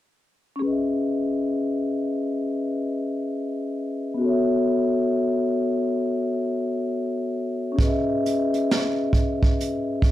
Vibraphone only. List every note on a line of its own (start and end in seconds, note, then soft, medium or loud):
0.56 4.13 C#4 medium
0.56 4.15 G#4 medium
0.63 4.17 B4 medium
0.63 4.19 D#5 medium
0.70 4.21 E5 medium
4.14 7.72 B3 medium
4.14 7.74 F#4 medium
4.21 7.75 A4 medium
4.21 7.77 C#5 medium
4.29 7.79 E5 medium
7.72 10.12 C#4 medium
7.72 10.12 G#4 medium
7.79 10.12 B4 medium
7.79 10.12 D#5 medium
7.87 10.12 E5 medium